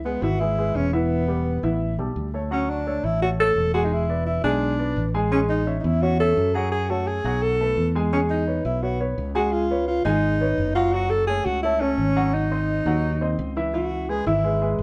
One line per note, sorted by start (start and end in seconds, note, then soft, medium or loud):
0.00 0.16 C#2 medium
0.05 0.19 G#3 medium
0.05 0.24 B3 medium
0.05 0.20 G#4 medium
0.05 0.20 B4 medium
0.22 0.71 G#1 medium
0.22 0.37 E3 medium
0.22 0.37 E4 medium
0.22 0.41 F#4 medium
0.22 0.37 E5 medium
0.40 0.55 G#3 medium
0.40 0.77 E4 medium
0.40 0.55 G#4 medium
0.40 0.55 B4 medium
0.58 0.87 G#3 medium
0.58 0.87 G#4 medium
0.58 0.87 B4 medium
0.75 1.57 E1 medium
0.75 0.93 C#4 medium
0.93 1.22 E3 medium
0.93 1.94 B3 medium
0.93 1.22 E4 medium
0.93 1.22 E5 medium
1.28 1.57 G3 medium
1.28 1.57 G4 medium
1.28 1.57 B4 medium
1.63 1.96 A1 medium
1.63 1.92 E3 medium
1.63 1.92 E4 medium
1.63 1.92 E5 medium
1.98 2.15 B1 medium
1.98 2.27 G3 medium
1.98 2.27 G4 medium
1.98 2.28 A4 medium
2.16 2.98 D2 medium
2.34 2.48 A3 medium
2.34 2.48 A4 medium
2.34 2.49 C#5 medium
2.51 2.80 F#3 medium
2.51 2.71 C#4 medium
2.51 2.80 F#4 medium
2.51 2.80 F#5 medium
2.70 3.06 D4 medium
2.87 3.15 A3 medium
2.87 3.15 A4 medium
2.87 3.16 C#5 medium
3.04 3.53 A1 medium
3.04 3.22 E4 medium
3.22 3.36 A3 medium
3.22 3.30 F#4 medium
3.22 3.36 A4 medium
3.22 3.36 C#5 medium
3.39 3.68 A3 medium
3.39 3.68 A4 medium
3.39 3.72 A4 loud
3.39 3.68 C#5 medium
3.56 4.38 E1 medium
3.74 4.03 G#3 medium
3.74 3.86 F#4 medium
3.74 4.03 G#4 medium
3.74 4.03 G#5 medium
3.84 3.94 D#4 medium
3.93 4.26 E4 medium
4.09 4.38 B3 medium
4.09 4.38 B4 medium
4.09 4.38 D5 medium
4.26 4.43 E4 medium
4.44 4.93 B1 medium
4.44 4.73 G#3 medium
4.44 5.10 D4 medium
4.44 4.73 G#4 medium
4.44 4.73 G#5 medium
4.79 5.08 B3 medium
4.79 5.08 B4 medium
4.79 5.08 D5 medium
4.96 5.78 A1 medium
5.14 5.29 G#3 medium
5.14 5.29 G#4 medium
5.14 5.29 G#5 medium
5.31 5.60 G#3 medium
5.31 5.40 C#4 medium
5.31 5.61 G#4 medium
5.31 5.61 G#5 medium
5.49 5.78 D#4 medium
5.67 5.95 C#4 medium
5.67 5.96 C#5 medium
5.67 5.96 E5 medium
5.80 5.86 D#4 medium
5.84 6.33 E2 medium
5.84 6.04 E4 medium
6.02 6.16 C#4 medium
6.02 6.19 F#4 medium
6.02 6.17 C#5 medium
6.02 6.17 E5 medium
6.20 6.48 C#4 medium
6.20 6.56 A4 medium
6.20 6.48 C#5 medium
6.20 6.49 E5 medium
6.37 7.19 F#2 medium
6.55 6.84 F#3 medium
6.55 6.84 F#4 medium
6.55 6.71 G#4 medium
6.55 6.84 F#5 medium
6.72 6.91 G#4 medium
6.90 7.18 A3 medium
6.90 7.09 F#4 medium
6.90 7.19 A4 medium
6.90 7.19 C#5 medium
7.07 7.44 G#4 medium
7.24 7.73 B1 medium
7.24 7.54 F#3 medium
7.24 7.54 F#4 medium
7.24 7.54 F#5 medium
7.42 7.95 A4 loud
7.61 7.89 A3 medium
7.61 7.89 A4 medium
7.61 7.89 B4 medium
7.77 8.59 E2 medium
7.95 8.10 G#3 medium
7.95 8.10 G#4 medium
7.95 8.10 G#5 medium
8.13 8.41 G#3 medium
8.13 8.21 C#4 medium
8.13 8.41 G#4 medium
8.13 8.42 G#5 medium
8.30 8.63 D#4 medium
8.47 8.76 B3 medium
8.47 8.76 B4 medium
8.47 8.76 C#5 medium
8.65 9.14 B1 medium
8.65 8.84 E4 medium
8.82 8.97 B3 medium
8.82 9.00 F#4 medium
8.82 8.97 B4 medium
8.82 8.97 C#5 medium
9.00 9.29 B3 medium
9.00 9.29 B4 medium
9.00 9.29 C#5 medium
9.18 10.00 C#2 medium
9.35 9.64 G#3 medium
9.35 9.54 F#4 medium
9.35 9.64 G#4 medium
9.35 9.64 G#5 medium
9.52 9.87 F4 medium
9.70 9.99 B3 medium
9.70 9.99 B4 medium
9.70 10.00 C#5 medium
9.88 10.04 F4 medium
10.05 10.54 G#1 medium
10.05 10.34 G#3 medium
10.05 10.71 D#4 loud
10.05 10.34 G#4 medium
10.05 10.34 G#5 medium
10.41 10.69 B3 medium
10.41 10.70 B4 medium
10.41 10.70 C#5 medium
10.58 11.40 F#1 medium
10.75 10.90 F#3 medium
10.75 10.95 F4 medium
10.75 10.90 F#4 medium
10.75 10.90 F#5 medium
10.93 11.22 F#3 medium
10.93 11.12 F#4 loud
10.93 11.22 F#4 medium
10.93 11.22 F#5 medium
11.10 11.27 A4 medium
11.27 11.57 A3 medium
11.27 11.47 G#4 loud
11.27 11.57 A4 medium
11.27 11.58 C#5 medium
11.45 11.95 C#2 medium
11.45 11.62 F#4 loud
11.63 11.78 A3 medium
11.63 11.82 E4 medium
11.63 11.78 A4 medium
11.63 11.78 C#5 medium
11.81 12.10 A3 medium
11.81 12.35 C#4 medium
11.81 12.10 A4 medium
11.81 12.10 C#5 medium
11.98 12.80 G#1 medium
12.16 12.45 F#3 medium
12.16 12.45 F#4 medium
12.16 12.45 F#5 medium
12.34 13.56 D#4 medium
12.51 12.80 C4 medium
12.51 12.80 C5 medium
12.51 12.80 D#5 medium
12.86 13.35 D#2 medium
12.86 13.15 F#3 medium
12.86 13.15 F#4 medium
12.86 13.15 F#5 medium
13.21 13.50 C4 medium
13.21 13.50 C5 medium
13.21 13.50 D#5 medium
13.39 14.20 C#2 medium
13.57 13.71 E3 medium
13.57 13.71 E4 medium
13.57 13.71 E5 medium
13.74 14.02 E3 medium
13.74 14.02 E4 medium
13.74 14.11 F#4 medium
13.74 14.03 E5 medium
14.09 14.23 G#3 medium
14.09 14.23 G#4 medium
14.09 14.26 G#4 medium
14.09 14.23 B4 medium
14.26 14.75 G#1 medium
14.26 14.41 E3 medium
14.26 14.41 E4 medium
14.26 14.75 E4 medium
14.26 14.41 E5 medium
14.44 14.58 G#3 medium
14.44 14.58 G#4 medium
14.44 14.59 B4 medium
14.62 14.83 G#3 medium
14.62 14.83 G#4 medium
14.62 14.83 B4 medium
14.79 14.83 G#1 medium